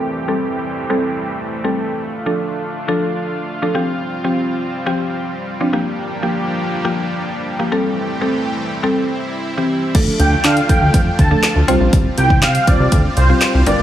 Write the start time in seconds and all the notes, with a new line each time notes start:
Already playing: E3 G3 A3 C4 G4 A4
0.28 G3 C4 A4
0.90 G3 C4 A4
1.64 G3 C4 A4
2.01 D4 F4
2.26 F3 D4 A4
2.88 F3 D4 A4
3.62 F3 D4 A4
3.74 F3 G3 C4 G4
4.24 F3 C4 G4
4.86 F3 C4 G4
5.60 F3 C4 D4
5.73 F3 A#3 D4 G4
6.22 F3 A#3 G4
6.85 F3 A#3 G4
7.59 F3 A#3 G4
7.71 E3 G3 A3 C4 G4 A4
8.21 G3 C4 A4
8.83 G3 C4 A4
8.96 E4
9.57 E3 C4 G4
9.95 D2 F3 A3 D4 F4 A4, kick, closed hi-hat, crash
10.19 D2 G5, closed hi-hat
10.44 D3 F5, snare, clap, closed hi-hat
10.57 closed hi-hat
10.69 F3 A3 D4 A4 G5, kick, closed hi-hat
10.81 D2
10.94 F2, kick, closed hi-hat
11.19 D2 A5, kick, closed hi-hat
11.31 F3 A3 D4 A4
11.43 snare, clap, closed hi-hat
11.56 D2
11.68 C2 G3 C4 F4 C5, closed hi-hat
11.80 A#1
11.93 C2, kick, closed hi-hat
12.18 C2 G5, closed hi-hat
12.30 kick
12.42 C3 F5, snare, clap, closed hi-hat
12.55 closed hi-hat
12.67 G3 C4 F4 C5 D5, kick, closed hi-hat
12.80 C2
12.92 D2, kick, closed hi-hat
13.17 C2 C5, closed hi-hat
13.29 G3 C4 F4 G4
13.41 snare, clap, closed hi-hat
13.54 C2
13.66 G1 D3 F3 G3 A#3 D4 F4 A#4 D5, closed hi-hat
13.79 F1